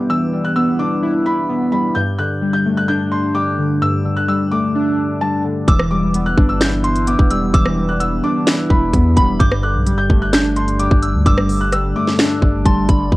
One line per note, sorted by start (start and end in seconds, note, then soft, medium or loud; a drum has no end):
0.00 0.10 E3 medium
0.00 0.33 G3 medium
0.00 0.56 B3 medium
0.00 0.79 D4 medium
0.00 0.33 E4 medium
0.10 1.26 E3 loud
0.10 0.43 E6 medium
0.33 1.49 G3 medium
0.45 0.55 F#6 medium
0.56 1.48 B3 loud
0.56 0.76 E6 medium
0.79 1.96 D4 medium
0.79 1.23 D6 medium
1.03 1.96 E4 loud
1.26 1.70 B5 medium
1.49 1.96 B3 medium
1.72 1.96 G3 medium
1.72 1.93 B5 medium
1.95 3.12 G2 loud
1.95 2.16 G6 medium
2.19 3.35 D3 medium
2.19 2.52 F#6 medium
2.42 3.34 G3 medium
2.53 2.74 G6 medium
2.65 3.82 A3 medium
2.77 2.87 F#6 medium
2.88 4.05 D4 loud
2.88 3.09 G6 medium
3.12 3.32 C6 medium
3.35 4.27 G3 medium
3.35 3.79 D6 medium
3.58 4.04 D3 medium
3.82 4.98 G2 medium
3.82 4.15 E6 loud
4.05 5.21 D3 medium
4.17 4.27 F#6 medium
4.28 5.20 G3 medium
4.28 4.49 E6 medium
4.52 5.68 A3 medium
4.52 5.17 D6 medium
4.75 5.68 D4 loud
5.21 5.68 G3 medium
5.21 5.42 A5 medium
5.44 5.68 D3 medium
5.68 6.35 E1 loud
5.68 6.84 E3 medium
5.68 7.27 D6 loud
5.68 5.88 E6 medium
5.68 kick loud
5.68 closed hi-hat medium
5.79 cross-stick loud
5.91 7.07 G3 medium
5.91 6.24 D6 medium
6.14 7.06 B3 medium
6.14 closed hi-hat medium
6.26 6.46 F#6 medium
6.37 7.16 G1 loud
6.37 7.54 D4 medium
6.37 kick loud
6.49 6.59 E6 medium
6.61 7.77 E4 loud
6.61 6.81 G6 medium
6.61 finger snap loud
6.61 snare loud
6.61 closed hi-hat medium
6.84 7.04 C6 medium
6.84 closed hi-hat medium
6.96 closed hi-hat medium
7.07 7.99 B3 medium
7.07 7.51 D6 medium
7.07 closed hi-hat medium
7.19 7.52 E1 loud
7.19 kick loud
7.30 7.76 G3 medium
7.30 7.53 E6 medium
7.30 closed hi-hat medium
7.54 8.21 E1 loud
7.54 8.70 E3 loud
7.54 9.13 D6 loud
7.54 7.87 E6 loud
7.54 kick loud
7.54 closed hi-hat medium
7.65 cross-stick loud
7.77 8.93 G3 medium
7.89 7.99 F#6 medium
8.00 8.92 B3 loud
8.00 8.21 E6 medium
8.00 closed hi-hat medium
8.24 9.40 D4 medium
8.24 8.67 D6 medium
8.47 9.40 E4 loud
8.47 finger snap loud
8.47 snare loud
8.47 closed hi-hat medium
8.70 8.92 E1 loud
8.70 9.14 B5 medium
8.70 kick medium
8.93 9.16 E2 loud
8.93 9.40 B3 medium
8.93 kick medium
8.93 closed hi-hat medium
9.16 9.39 E1 loud
9.16 9.40 G3 medium
9.16 9.37 B5 medium
9.16 9.39 B5 medium
9.16 kick loud
9.16 closed hi-hat medium
9.39 9.76 G1 loud
9.39 10.56 G2 loud
9.39 10.99 D6 loud
9.39 9.60 G6 medium
9.39 kick loud
9.39 closed hi-hat medium
9.52 cross-stick loud
9.63 10.80 D3 medium
9.63 9.96 F#6 medium
9.75 9.94 B1 loud
9.86 10.78 G3 medium
9.86 closed hi-hat medium
9.92 10.09 G1 loud
9.98 10.18 G6 medium
10.10 10.88 G1 loud
10.10 11.26 A3 medium
10.10 kick loud
10.22 10.32 F#6 medium
10.33 11.49 D4 loud
10.33 10.53 G6 medium
10.33 finger snap loud
10.33 snare loud
10.33 closed hi-hat medium
10.56 10.77 C6 medium
10.56 closed hi-hat medium
10.68 closed hi-hat medium
10.79 11.71 G3 medium
10.79 11.23 D6 medium
10.79 closed hi-hat medium
10.91 11.16 G1 loud
10.91 kick loud
11.02 11.48 D3 medium
11.02 11.25 E6 medium
11.02 closed hi-hat medium
11.14 11.25 D2 loud
11.26 11.93 G1 loud
11.26 12.42 G2 medium
11.26 12.61 D6 loud
11.26 11.59 E6 loud
11.26 kick loud
11.26 closed hi-hat medium
11.38 cross-stick loud
11.49 12.65 D3 medium
11.49 open hi-hat medium
11.61 11.71 F#6 medium
11.72 12.64 G3 medium
11.72 11.93 E6 medium
11.72 cross-stick medium
11.72 closed hi-hat medium
11.96 13.12 A3 medium
11.96 12.62 D6 medium
12.08 snare medium
12.19 13.12 D4 loud
12.19 finger snap loud
12.19 snare loud
12.19 closed hi-hat medium
12.42 12.65 G1 loud
12.42 kick medium
12.65 12.88 G1 loud
12.65 13.12 G3 medium
12.65 12.86 A5 medium
12.65 12.88 C6 medium
12.65 kick medium
12.65 closed hi-hat medium
12.88 13.11 G1 loud
12.88 13.12 D3 medium
12.88 13.11 B5 medium
12.88 kick loud
12.88 closed hi-hat medium
13.12 13.17 E1 loud
13.12 13.17 E3 loud
13.12 kick loud